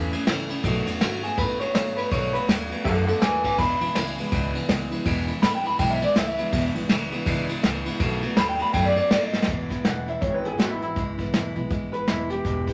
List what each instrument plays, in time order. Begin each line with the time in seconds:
Already playing: upright bass E2, steel-string acoustic guitar A2 E3 A3 C#4 E4
0.12 steel-string acoustic guitar A3 C#4 E4, ride
0.26 upright bass C#2, steel-string acoustic guitar E3 A3 C#4 E4, snare, ride
0.49 steel-string acoustic guitar A3 C#4 E4, ride
0.64 upright bass B1, steel-string acoustic guitar B2 D#3 A3 B3 F#4, kick, ride
0.86 upright bass E2, steel-string acoustic guitar A3 B3 F#4, ride
1.00 upright bass G#2, steel-string acoustic guitar D#3 A3 B3 F#4, clean electric guitar F#4, snare, ride
1.23 steel-string acoustic guitar A3 B3 F#4, clean electric guitar G#4, ride
1.38 upright bass A2, steel-string acoustic guitar B2 D#3 A3 B3 F#4, clean electric guitar B4, kick, snare, ride
1.60 steel-string acoustic guitar A3 B3 F#4, clean electric guitar C#5, ride
1.74 upright bass G#2, steel-string acoustic guitar D#3 A3 B3 F#4, snare, ride
1.96 steel-string acoustic guitar A3 B3 F#4, clean electric guitar B4, ride
2.11 upright bass B1, steel-string acoustic guitar B2 D#3 A3 B3 F#4, clean electric guitar C#5, kick, ride
2.33 steel-string acoustic guitar A3 B3 F#4, clean electric guitar B4, ride
2.47 upright bass D#2, steel-string acoustic guitar D#3 A3 B3 F#4, snare, ride
2.70 steel-string acoustic guitar A3 B3 F#4, ride
2.84 upright bass F#2, steel-string acoustic guitar B2 D#3 A3 B3 F#4, clean electric guitar A4 F#5, kick, ride
3.06 steel-string acoustic guitar A3 B3 F#4, clean electric guitar A4 F#5, ride
3.21 upright bass D#2, steel-string acoustic guitar D#3 A3 B3 F#4, clean electric guitar B4 G#5, snare, ride
3.44 steel-string acoustic guitar A3 B3 F#4, clean electric guitar B4 G#5, kick, ride
3.58 upright bass E1, steel-string acoustic guitar E2 B2 E3 G#3 B3 E4, clean electric guitar B5, kick, ride
3.81 upright bass A1, steel-string acoustic guitar E3 G#3 B3 E4, ride
3.95 upright bass C#2, steel-string acoustic guitar E3 G#3 B3 E4, snare, ride
4.17 steel-string acoustic guitar E3 G#3 B3 E4, ride
4.31 upright bass C#2, steel-string acoustic guitar E2 B2 E3 G#3 B3 E4, kick, ride
4.54 steel-string acoustic guitar E3 G#3 B3 E4, ride
4.68 upright bass C#2, steel-string acoustic guitar E3 G#3 B3 E4, snare, ride
4.91 steel-string acoustic guitar E3 G#3 B3 E4, ride
5.05 upright bass E1, steel-string acoustic guitar E2 B2 E3 G#3 B3 E4, kick, ride
5.27 steel-string acoustic guitar E3 G#3 B3 E4, ride
5.42 upright bass G#1, steel-string acoustic guitar E3 G#3 B3 E4, clean electric guitar B5, snare, ride
5.55 clean electric guitar G5
5.64 steel-string acoustic guitar E3 G#3 B3 E4, clean electric guitar B5, ride
5.78 upright bass B1, steel-string acoustic guitar E2 B2 E3 G#3 B3 E4, clean electric guitar G5, kick, snare, ride
5.90 clean electric guitar E5
6.01 steel-string acoustic guitar E3 G#3 B3 E4, clean electric guitar D5, ride
6.15 upright bass C#2, steel-string acoustic guitar E3 G#3 B3 E4, clean electric guitar E5, snare, ride
6.27 clean electric guitar E5
6.37 steel-string acoustic guitar E3 G#3 B3 E4, ride
6.52 upright bass E1, steel-string acoustic guitar E2 B2 E3 G#3 B3 E4, kick, ride
6.75 upright bass A1, steel-string acoustic guitar E3 G#3 B3 E4, ride
6.89 upright bass C#2, steel-string acoustic guitar E3 G#3 B3 E4, snare, ride
7.11 steel-string acoustic guitar E3 G#3 B3 E4, ride
7.26 upright bass C#2, steel-string acoustic guitar E2 B2 E3 G#3 B3 E4, kick, snare, ride
7.48 steel-string acoustic guitar E3 G#3 B3 E4, ride
7.62 upright bass C#2, steel-string acoustic guitar E3 G#3 B3 E4, snare, ride
7.86 steel-string acoustic guitar E3 G#3 B3 E4, ride
8.00 upright bass B1, steel-string acoustic guitar B2 D#3 A3 B3 F#4, kick, ride
8.22 steel-string acoustic guitar A3 B3 F#4, ride
8.37 upright bass D#2, steel-string acoustic guitar D#3 A3 B3 F#4, clean electric guitar B5, snare, ride
8.49 clean electric guitar G5
8.59 steel-string acoustic guitar A3 B3 F#4, clean electric guitar B5, ride
8.73 upright bass F#2, steel-string acoustic guitar B2 D#3 A3 B3 F#4, clean electric guitar G5, kick, ride
8.86 clean electric guitar D5
8.96 steel-string acoustic guitar A3 B3 F#4, clean electric guitar D5, ride
9.10 upright bass G#2, steel-string acoustic guitar D#3 A3 B3 F#4, clean electric guitar D5, snare, ride
9.24 clean electric guitar D#5
9.32 steel-string acoustic guitar A3 B3 F#4, snare
9.42 snare
9.47 upright bass E1, steel-string acoustic guitar E2 B2 E3 G#3 B3 E4, kick, closed hi-hat
9.69 steel-string acoustic guitar E3 G#3 B3 E4, kick, snare, closed hi-hat
9.84 upright bass E1, steel-string acoustic guitar E2 B2 E3 G#3 B3 E4, clean electric guitar F#5, snare, closed hi-hat
10.06 steel-string acoustic guitar E3 G#3 B3 E4, clean electric guitar E5, closed hi-hat
10.21 upright bass G#1, steel-string acoustic guitar E3 G#3 B3 E4, clean electric guitar C#5, kick, closed hi-hat
10.34 clean electric guitar B4
10.44 steel-string acoustic guitar E3 G#3 B3 E4, clean electric guitar G#4, closed hi-hat
10.58 upright bass G#1, steel-string acoustic guitar E2 B2 E3 G#3 B3 E4, clean electric guitar F#4, snare, closed hi-hat
10.71 clean electric guitar E4
10.80 steel-string acoustic guitar E3 G#3 B3 E4, clean electric guitar E4, closed hi-hat
10.96 upright bass C#2, steel-string acoustic guitar E2 B2 E3 G#3 B3 E4, kick, closed hi-hat
11.18 steel-string acoustic guitar E3 G#3 B3 E4, kick, closed hi-hat
11.33 upright bass E1, steel-string acoustic guitar E2 B2 E3 G#3 B3 E4, snare, closed hi-hat
11.55 upright bass B1, steel-string acoustic guitar E3 G#3 B3 E4, closed hi-hat
11.70 upright bass A1, steel-string acoustic guitar E3 G#3 B3 E4, kick, closed hi-hat
11.92 steel-string acoustic guitar E3 G#3 B3 E4, clean electric guitar B4, closed hi-hat
12.07 upright bass E1, steel-string acoustic guitar E2 B2 E3 G#3 B3 E4, clean electric guitar E4, snare, closed hi-hat
12.29 steel-string acoustic guitar E3 G#3 B3 E4, clean electric guitar G4, closed hi-hat
12.45 upright bass E1, steel-string acoustic guitar E2 B2 E3 G#3 B3 E4, kick, closed hi-hat
12.67 steel-string acoustic guitar E3 G#3 B3 E4, kick, closed hi-hat